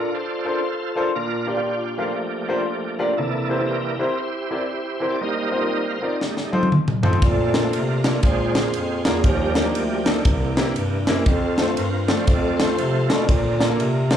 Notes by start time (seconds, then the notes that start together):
Already playing: D4 F4 A#4
0.14 F4 A4 C5
0.45 D4 F4 A4 A#4 C5
0.96 D4 F4 A4 A#4 C5
1.15 A#2 D4 F4 A#4
1.47 D4 F4 G4 A#4 D5
1.56 D4 F4 G4 A#4 D5
1.97 F3 A3 A#3 D4 F4 G4 A#4 F5
2.48 D4 F4 G4 A#4 C5
2.99 D4 F4 G4 A#4 D5
3.17 C3 E3 A#3 D4 E4 A4
3.49 C4 E4 G4 A#4 C5
3.58 C4 E4 G4 A#4 C5
3.67 E4 G4 A#4
3.99 C4 E4 G4 A#4 C5
4.18 E4 G4 C5
4.51 C4 E4 G4 A#4 D5
4.69 E4 G4 C5
5.00 C4 E4 G4 A#4 C5
5.10 D5
5.21 G3 A#3 D#4 A#4 C5 D#5
5.51 C4 D#4 F4 A#4 C5
5.60 C4 D#4 F4 A#4 D5
5.89 F5
6.00 C4 D#4 F4 A#4 D5 D#5
6.09 D5
6.16 D#5
6.21 G3 A3 D#4, snare
6.37 snare
6.52 C4 D#4 F4 A4 C5, high tom
6.63 high tom
6.72 mid tom
6.88 mid tom
7.03 C4 D#4 F4 A4 C5, floor tom
7.13 floor tom
7.22 A#2 A3 C4 D4 F4 A4, kick, ride
7.53 A#3 D4 F4 A4 A#4, snare, ride
7.63 A#3 D4 F4 A4 A#4
7.73 C3 D4 F4 A#4, ride
8.04 A#3 D4 F4 A4 A#4, snare, ride
8.22 A#2 G#3 C4 D4 F4 G#4 C5, kick, ride
8.55 A#3 D4 F4 G#4 A#4, snare, ride
8.73 F2, ride
9.05 E2 A#3 D4 F4 G#4 A#4, snare, ride
9.24 D#2 D#3 F3 G3 D4 G4 A#4, kick, ride
9.55 A#3 D4 D#4 G4 A#4, snare, ride
9.65 A#3 D4 D#4 G4 A#4
9.74 D2, ride
10.05 A#3 D4 D#4 G4 A4, snare, ride
10.24 C2 C3 E3 A#3 D4, kick, ride
10.57 A#3 C4 E4 G4 A#4, snare, ride
10.75 G2, ride
11.07 F#2 A#3 C4 E4 G4 A#4, snare, ride
11.26 F2 C4 F4 A4, kick, ride
11.58 A3 C4 F4 A4 C5, snare, ride
11.67 A3 C4 F4 A4 C5
11.76 G2 F4 A#4, ride
12.08 F3 A3 C4 F4 A4 D5, snare, ride
12.17 C5
12.26 F2 F4 A4 D5, kick, ride
12.56 A3 C4 F4 A4 C5, snare, ride
12.61 A4 C5
12.78 C3, ride
13.08 B2 A3 C4 D4 F4 A4 A#4 D5, snare, ride
13.28 A#2 D3 C4 A4, kick, ride
13.59 A#3 D4 F4 A4 A#4, snare, ride
13.69 A#3 D4 F4 A4 A#4
13.79 C3, ride
14.10 A#3 D4 F4 A4 C5, snare, ride